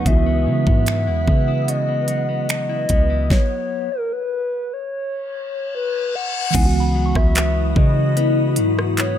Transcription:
Already playing: clean electric guitar B2 G#3 C#4 D#4, ambient pad D#6
0.02 tine electric piano E3 G#3
0.06 808-style bass C#2, clean electric guitar C#3, tine electric piano B3 E4, ambient pad B4 F#5, soft synth lead E5, kick, closed hi-hat
0.10 tine electric piano F#4
0.26 clean electric guitar B3
0.47 808-style bass C#3, clean electric guitar F#3
0.67 808-style bass G#2, clean electric guitar B3, kick
0.86 clean electric guitar F#3, soft synth lead E5, finger snap, closed hi-hat
1.07 808-style bass E2, clean electric guitar E4
1.28 808-style bass C#3, clean electric guitar B3, kick
1.48 clean electric guitar E4
1.68 clean electric guitar C#3, soft synth lead D#5, closed hi-hat
1.89 clean electric guitar B3
2.08 clean electric guitar F#3, closed hi-hat
2.29 clean electric guitar B3
2.49 clean electric guitar F#3, soft synth lead D#5, finger snap, closed hi-hat
2.69 clean electric guitar E4
2.89 808-style bass C#2, clean electric guitar B3, kick, closed hi-hat
3.10 clean electric guitar E4
3.30 soft synth lead C#5, kick, snare
3.92 soft synth lead A#4
4.12 soft synth lead B4
4.73 soft synth lead C#5
4.92 reverse cymbal
5.75 soft synth lead B4
6.15 soft synth lead F#5
6.51 clean electric guitar C#3, tine electric piano E3 G#3, ambient pad F#4 B5 D#6, synth bell G#5, kick, crash
6.55 808-style bass C#2, tine electric piano B3 E4, ambient pad E4, closed hi-hat
6.59 tine electric piano E4
6.65 tine electric piano F#4
6.80 synth bell B5
6.95 clean electric guitar F#3
7.06 synth bell C#6
7.15 808-style bass C#2, soft synth lead E5, kick, cross-stick
7.35 clean electric guitar B3, clap, closed hi-hat
7.70 soft synth lead E5
7.76 808-style bass C#3, clean electric guitar F#3, soft synth lead D#5, kick
8.17 clean electric guitar B3, closed hi-hat
8.56 808-style bass G#2, clean electric guitar F#3, closed hi-hat
8.79 cross-stick
8.98 clean electric guitar B3, soft synth lead C#5, clap, closed hi-hat

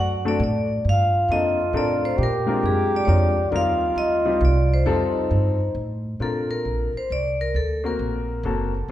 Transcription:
Already playing: upright bass F#2, trombone F#4, vibraphone F#5
0.25 upright piano A3 C4 D4 F#4 A4, vibraphone D5
0.40 upright bass A2, vibraphone D5
0.85 upright bass G2, trombone F4
0.89 vibraphone F5
1.29 upright bass F2, upright piano A#3 C4 D4 F4 A4, vibraphone D#5
1.73 upright bass A2, upright piano C4 D4 F4 A4 A#4, vibraphone D5
2.05 vibraphone C5
2.17 upright bass A#2, trombone G4
2.23 vibraphone A#4
2.46 upright piano G#3 C4 D4 F4 A#4
2.63 upright bass F#2, vibraphone G#4
2.96 vibraphone D5
3.05 upright bass F2, upright piano G#3 C4 D4 F4 A#4, vibraphone C#5 D5
3.52 upright bass D#2, upright piano G3 C4 D#4 F4 A#4, trombone F4
3.56 vibraphone F5
3.96 upright bass D2, vibraphone D#5
4.25 upright piano G3 C4 D#4 F4 G4
4.41 upright bass C2
4.45 vibraphone D5
4.74 vibraphone C5
4.86 upright bass F2, upright piano G3 C4 D#4 F4 A4, trombone D#4
5.31 upright bass G2
5.75 upright bass A2
6.20 upright bass A#2, upright piano C4 D4 F4 A#4, vibraphone A4
6.51 vibraphone A#4
6.65 upright bass A#1
6.94 vibraphone C5, muted upright bass stroke
7.10 upright bass C2, vibraphone D5
7.41 vibraphone A#4
7.54 upright bass D2, vibraphone A4
7.84 upright piano A#3 C4 F#4 A#4, vibraphone A#4
7.99 upright bass A#1
8.43 upright bass F#1, upright piano A#3 C4 F#4 A4

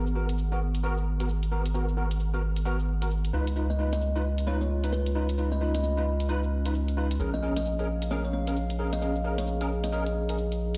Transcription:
Already playing: sub bass G#1, ambient pad B3 G#4 F#5 A#5
0.06 shaker
0.15 tine electric piano B3 F#4 A#4
0.29 closed hi-hat, shaker
0.38 shaker
0.52 tine electric piano B3 F#4 A#4, shaker
0.75 closed hi-hat, shaker
0.83 tine electric piano B3 F#4 A#4, shaker
0.97 shaker
1.20 tine electric piano B3 F#4 A#4, closed hi-hat, shaker
1.29 shaker
1.43 closed hi-hat, shaker
1.52 tine electric piano B3 F#4 A#4
1.66 closed hi-hat, shaker
1.74 tine electric piano B3 F#4 A#4, shaker
1.88 shaker
1.97 tine electric piano B3 F#4 A#4
2.11 closed hi-hat, shaker
2.20 shaker
2.34 tine electric piano B3 F#4 A#4, shaker
2.56 closed hi-hat, shaker
2.65 tine electric piano B3 F#4 A#4, shaker
2.79 shaker
3.02 tine electric piano B3 F#4 A#4, closed hi-hat, shaker
3.11 shaker
3.25 closed hi-hat, shaker
3.33 sub bass C#2, ambient pad C#4, tine electric piano D#4 F4 B4
3.47 closed hi-hat, shaker
3.56 tine electric piano D#4 F4 B4, ambient pad F4, shaker
3.70 kalimba D#5, shaker
3.79 tine electric piano D#4 F4 B4
3.93 kalimba D#5, closed hi-hat, shaker
4.02 shaker
4.13 tine electric piano D#4 F4 B4, ambient pad D#5, shaker
4.38 closed hi-hat, shaker
4.47 tine electric piano D#4 F4 B4, kalimba C#5, shaker
4.61 kalimba C#5, shaker
4.77 ambient pad B5
4.84 tine electric piano D#4 F4 B4, closed hi-hat, shaker
4.92 kalimba B4, shaker
5.06 closed hi-hat, shaker
5.15 tine electric piano D#4 F4 B4
5.29 closed hi-hat, shaker
5.38 tine electric piano D#4 F4 B4, shaker
5.52 kalimba D#5, shaker
5.61 tine electric piano D#4 F4 B4
5.75 kalimba D#5, closed hi-hat, shaker
5.83 kalimba D#5, shaker
5.97 tine electric piano D#4 F4 B4, shaker
6.20 closed hi-hat, shaker
6.29 tine electric piano D#4 F4 B4, shaker
6.43 shaker
6.65 tine electric piano D#4 F4 B4, closed hi-hat, shaker
6.74 shaker
6.88 closed hi-hat, shaker
6.97 tine electric piano D#4 F4 B4
7.11 closed hi-hat, shaker
7.20 sub bass A#1, tine electric piano C#4 G#4 A#4, shaker
7.34 kalimba D#5, shaker
7.43 tine electric piano C#4 G#4 A#4, ambient pad F5
7.56 ambient pad G#4, kalimba D#5, closed hi-hat, shaker
7.64 ambient pad A#5, shaker
7.79 tine electric piano C#4 G#4 A#4, shaker
8.02 closed hi-hat, shaker
8.11 tine electric piano C#4 G#4 A#4, kalimba C#5, shaker
8.25 kalimba C#5, shaker
8.33 kalimba C#5
8.47 tine electric piano C#4 G#4 A#4, closed hi-hat, shaker
8.56 shaker
8.70 closed hi-hat, shaker
8.79 tine electric piano C#4 G#4 A#4
8.93 kalimba D#5, closed hi-hat, shaker
9.02 tine electric piano C#4 G#4 A#4, shaker
9.15 shaker
9.24 tine electric piano C#4 G#4 A#4
9.38 kalimba C#5, closed hi-hat, shaker
9.47 shaker
9.61 tine electric piano C#4 G#4 A#4, closed hi-hat, shaker
9.84 kalimba D#5, closed hi-hat, shaker
9.92 tine electric piano C#4 G#4 A#4, kalimba D#5, shaker
10.06 closed hi-hat, shaker
10.29 tine electric piano C#4 G#4 A#4, closed hi-hat, shaker
10.38 shaker
10.52 closed hi-hat, shaker

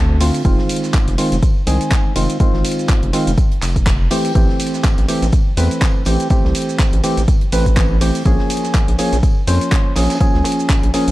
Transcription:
Already playing: analog synth bass D2, synth stab D3 A3 C4 A4
0.20 synth stab D3 A3 C4 F4, open hi-hat, ride, shaker
0.34 closed hi-hat, shaker
0.45 analog synth bass F1, synth stab D#3 G#3 C4 F4, kick, closed hi-hat, tambourine, shaker
0.59 snare
0.69 open hi-hat, ride, tambourine, shaker
0.76 closed hi-hat
0.83 snare, shaker
0.93 kick, snare, clap, closed hi-hat, tambourine, shaker
1.07 analog synth bass F1, snare, closed hi-hat
1.18 synth stab D#3 G#3 C4 F4, open hi-hat, ride, tambourine, shaker
1.32 analog synth bass F1, snare, closed hi-hat, shaker
1.43 kick, closed hi-hat, tambourine, shaker
1.67 analog synth bass C2, synth stab D#3 G#3 C4 G#4, open hi-hat, ride, tambourine, shaker
1.81 closed hi-hat, shaker
1.91 kick, snare, clap, closed hi-hat, tambourine, shaker
2.16 analog synth bass F1, synth stab D#3 G#3 C4 F4, open hi-hat, ride, tambourine, shaker
2.30 closed hi-hat, shaker
2.40 synth stab D#3 G#3 C4 F4, kick, closed hi-hat, tambourine, shaker
2.54 analog synth bass G#1, snare
2.65 snare, open hi-hat, ride, tambourine, shaker
2.72 closed hi-hat
2.79 shaker
2.88 kick, snare, clap, closed hi-hat, tambourine, shaker
3.03 analog synth bass F1, closed hi-hat
3.13 synth stab D#3 G#3 C4 F4, snare, open hi-hat, ride, tambourine, shaker
3.27 analog synth bass F1, closed hi-hat, shaker
3.38 kick, closed hi-hat, tambourine, shaker
3.52 closed hi-hat
3.62 analog synth bass F1, clap, open hi-hat, ride, tambourine, shaker
3.76 kick, closed hi-hat, shaker
3.86 kick, snare, clap, closed hi-hat, tambourine, shaker
4.11 synth stab E3 A3 C4 G4, open hi-hat, ride, shaker
4.25 closed hi-hat, shaker
4.35 analog synth bass A1, synth stab E3 A3 C4 G4, kick, closed hi-hat, tambourine, shaker
4.49 snare
4.60 open hi-hat, ride, tambourine, shaker
4.67 closed hi-hat
4.74 snare, shaker
4.84 kick, snare, clap, closed hi-hat, tambourine, shaker
4.97 analog synth bass A1, snare, closed hi-hat
5.08 synth stab E3 A3 C4 G4, open hi-hat, ride, tambourine, shaker
5.22 analog synth bass A1, snare, closed hi-hat, shaker
5.32 kick, closed hi-hat, tambourine, shaker
5.57 analog synth bass E2, synth stab E3 A3 C4 B4, open hi-hat, ride, tambourine, shaker
5.71 closed hi-hat, shaker
5.82 kick, snare, clap, closed hi-hat, tambourine, shaker
6.05 analog synth bass A1, synth stab E3 A3 C4 G4, open hi-hat, ride, tambourine, shaker
6.20 closed hi-hat, shaker
6.30 synth stab E3 A3 C4 G4, kick, closed hi-hat, tambourine, shaker
6.44 analog synth bass C2, snare
6.55 snare, open hi-hat, ride, tambourine, shaker
6.62 closed hi-hat
6.69 shaker
6.79 kick, snare, clap, closed hi-hat, tambourine, shaker
6.93 analog synth bass A1, closed hi-hat
7.03 synth stab E3 A3 C4 G4, snare, open hi-hat, ride, tambourine, shaker
7.17 analog synth bass A1, closed hi-hat, shaker
7.28 kick, closed hi-hat, tambourine, shaker
7.41 closed hi-hat
7.52 analog synth bass A1, synth stab E3 A3 C4 B4, open hi-hat, ride, tambourine, shaker
7.66 kick, closed hi-hat, shaker
7.77 kick, snare, clap, closed hi-hat, tambourine, shaker
8.01 synth stab E3 A3 C4 G4, open hi-hat, ride, shaker
8.15 closed hi-hat, shaker
8.25 analog synth bass A#1, synth stab F3 A#3 C#4 G#4, kick, closed hi-hat, tambourine, shaker
8.39 snare
8.50 open hi-hat, ride, tambourine, shaker
8.57 closed hi-hat
8.64 snare, shaker
8.74 kick, snare, clap, closed hi-hat, tambourine, shaker
8.88 analog synth bass A#1, snare, closed hi-hat
8.98 synth stab F3 A#3 C#4 G#4, open hi-hat, ride, tambourine, shaker
9.12 analog synth bass A#1, snare, closed hi-hat, shaker
9.23 kick, closed hi-hat, tambourine, shaker
9.47 analog synth bass F2, synth stab F3 A#3 C#4 C5, open hi-hat, ride, tambourine, shaker
9.61 closed hi-hat, shaker
9.72 kick, snare, clap, closed hi-hat, tambourine, shaker
9.96 analog synth bass A#1, synth stab F3 A#3 C#4 G#4, snare, open hi-hat, ride, tambourine, shaker
10.02 snare, tambourine
10.10 snare, closed hi-hat, tambourine, shaker
10.15 snare, tambourine
10.20 synth stab F3 A#3 C#4 G#4, kick, closed hi-hat, tambourine, shaker
10.34 analog synth bass C#2, snare
10.44 snare, open hi-hat, ride, tambourine, shaker
10.52 closed hi-hat
10.60 shaker
10.69 kick, snare, clap, closed hi-hat, tambourine, shaker
10.83 analog synth bass A#1, closed hi-hat
10.94 synth stab F3 A#3 C#4 G#4, snare, open hi-hat, ride, tambourine, shaker
11.08 analog synth bass A#1, closed hi-hat, shaker

